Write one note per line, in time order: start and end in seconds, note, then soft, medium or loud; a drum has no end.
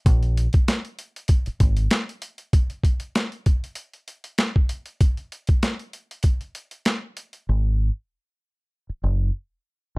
0.06 0.47 A#1 loud
0.06 kick loud
0.06 closed hi-hat medium
0.23 closed hi-hat soft
0.37 closed hi-hat medium
0.53 kick loud
0.53 closed hi-hat medium
0.68 snare loud
0.68 closed hi-hat loud
0.85 closed hi-hat soft
0.99 closed hi-hat medium
1.16 closed hi-hat medium
1.28 kick loud
1.28 closed hi-hat medium
1.46 muted fingered electric bass stroke soft
1.46 closed hi-hat soft
1.60 1.87 G#1 medium
1.60 kick loud
1.60 closed hi-hat medium
1.77 closed hi-hat medium
1.91 snare loud
1.91 closed hi-hat loud
2.09 closed hi-hat soft
2.22 closed hi-hat medium
2.38 closed hi-hat soft
2.53 kick loud
2.53 closed hi-hat medium
2.70 closed hi-hat soft
2.84 kick medium
2.84 closed hi-hat medium
3.00 closed hi-hat medium
3.15 snare loud
3.15 closed hi-hat medium
3.32 closed hi-hat soft
3.46 kick loud
3.46 closed hi-hat medium
3.64 closed hi-hat soft
3.75 closed hi-hat medium
3.93 closed hi-hat soft
4.08 closed hi-hat medium
4.24 closed hi-hat medium
4.38 snare loud
4.38 closed hi-hat medium
4.56 kick loud
4.69 closed hi-hat medium
4.86 closed hi-hat soft
5.01 kick loud
5.01 closed hi-hat medium
5.17 closed hi-hat soft
5.32 closed hi-hat medium
5.47 kick loud
5.47 closed hi-hat medium
5.63 snare loud
5.63 closed hi-hat medium
5.79 closed hi-hat soft
5.93 closed hi-hat medium
6.11 closed hi-hat soft
6.23 kick medium
6.23 closed hi-hat medium
6.41 closed hi-hat soft
6.55 closed hi-hat medium
6.71 closed hi-hat medium
6.85 snare loud
6.85 closed hi-hat medium
7.17 closed hi-hat medium
7.33 closed hi-hat soft
7.49 7.89 G#1 medium
8.89 muted fingered electric bass stroke soft
9.03 9.29 F#1 medium